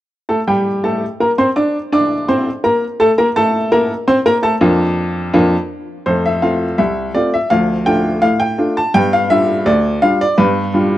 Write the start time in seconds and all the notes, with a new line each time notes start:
0.29 A3 A4 A5
0.47 G3 G4 G5
0.84 A3 A4 A5
1.20 A#3 A#4 A#5
1.38 C4 C5 C6
1.56 D4 D5 D6
1.92 D4 D5 D6
2.28 C4 C5 C6
2.64 A#3 A#4 A#5
3.00 A3 A4 A5
3.18 A#3 A#4 A#5
3.36 A3 A4 A5
3.72 A#3 A#4 A#5
4.08 C4 C5 C6
4.26 A#3 A#4 A#5
4.43 A3 A4 A5
4.61 F2 A#3 D4 F4
5.34 F2 A#3 D4 F4
6.06 F2 A3 C5
6.26 E5
6.42 A3 C4 F4 F5
6.78 C2 E5
7.15 A3 C4 F4 D5
7.34 E5
7.50 D2 F3 F5
7.86 A3 D4 F4 G5
8.22 A2 F5
8.40 G5
8.58 A3 D4 F4
8.77 A5
8.94 G2 B3 G5
9.13 F5
9.30 G3 D4 F4 E5
9.66 D2 D5
10.02 G3 D4 F4 F5
10.21 D5
10.38 G2 B3 B4
10.74 G3 D4 F4